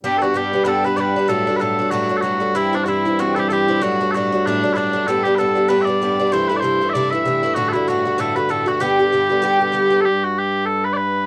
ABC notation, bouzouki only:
X:1
M:4/4
L:1/8
Q:"Swing" 1/4=192
K:G
V:1 name="Bouzouki"
[G,,G,B,D] [G,B,D] [G,,G,B,D] [G,B,D] [G,,G,B,D] [G,B,D] [G,,G,B,D] [G,B,D] | [A,,F,A,D] [F,A,D] [A,,F,A,D] [F,A,D] [A,,F,A,D] [F,A,D] [A,,F,A,D] [F,A,D] | [G,,E,CE] [E,CE] [G,,E,CE] [E,CE] [G,,E,CE] [E,CE] [G,,E,CE] [E,CE] | [A,,F,A,D] [F,A,D] [A,,F,A,D] [F,A,D] [A,,F,A,D] [F,A,D] [A,,F,A,D] [F,A,D] |
[A,,G,B,D] [G,B,D] [A,,G,B,D] [G,B,D] [A,,G,B,D] [G,B,D] [A,,G,B,D] [G,B,D] | [C,E,A,E] [E,A,E] [C,E,A,E] [E,A,E] [C,E,A,E] [E,A,E] [C,E,A,E] [E,A,E] | [A,,D,A,F] [D,A,F] [A,,D,A,F] [D,A,F] [A,,D,A,F] [D,A,F] [A,,D,A,F] [D,A,F] | [G,,D,B,G] [D,B,G] [G,,D,B,G] [D,B,G] [G,,D,B,G] [D,B,G] [G,,D,B,G] [D,B,G] |
z8 |]